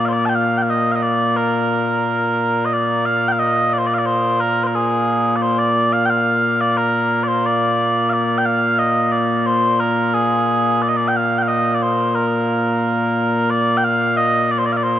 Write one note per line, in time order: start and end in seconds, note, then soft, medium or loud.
0.00 14.99 A#2 medium
0.00 14.99 A#3 medium
0.05 0.13 C5 medium
0.05 0.09 F5 medium
0.13 0.25 D5 loud
0.25 0.35 G5 medium
0.25 0.29 A5 medium
0.35 0.58 F5 loud
0.58 0.62 G5 medium
0.62 0.70 F5 medium
0.70 0.92 D#5 medium
0.92 1.02 D#5 medium
0.92 0.96 F5 medium
1.02 1.37 D5 medium
1.37 2.65 A#4 medium
2.65 2.73 D#5 medium
2.73 3.05 D5 medium
3.05 3.28 F5 loud
3.28 3.39 F5 medium
3.28 3.32 G5 medium
3.39 3.73 D#5 medium
3.73 3.78 D5 medium
3.78 3.87 C5 medium
3.87 3.94 D5 loud
3.94 3.98 F5 medium
3.98 4.06 D5 medium
4.06 4.40 C5 loud
4.40 4.64 A#4 loud
4.64 4.75 A#4 medium
4.64 4.67 C5 medium
4.75 5.36 G#4 medium
5.36 5.42 D5 medium
5.42 5.59 C5 medium
5.59 5.93 D5 loud
5.93 6.06 F5 loud
6.06 6.10 G5 loud
6.10 6.61 F5 loud
6.61 6.77 D5 loud
6.77 7.24 A#4 loud
7.24 7.28 D5 medium
7.28 7.46 C5 medium
7.46 8.09 D5 loud
8.09 8.38 D5 medium
8.09 8.13 F5 medium
8.38 8.45 G5 medium
8.45 8.79 F5 loud
8.79 9.12 D#5 medium
9.12 9.46 D5 medium
9.46 9.80 C5 loud
9.80 10.14 A#4 medium
10.14 10.82 G#4 medium
10.82 10.88 D5 medium
10.88 10.96 D#5 medium
10.96 11.08 D5 medium
11.08 11.16 G5 medium
11.16 11.38 F5 loud
11.38 11.48 F5 medium
11.38 11.42 G5 medium
11.48 11.74 D#5 loud
11.74 11.83 D5 medium
11.83 12.15 C5 medium
12.15 13.50 A#4 medium
13.50 13.77 D5 loud
13.77 13.84 G5 medium
13.84 14.17 F5 loud
14.17 14.51 D#5 loud
14.51 14.59 D5 medium
14.59 14.66 C5 medium
14.66 14.72 D5 loud
14.72 14.77 F5 medium
14.77 14.83 D5 medium
14.83 14.99 C5 medium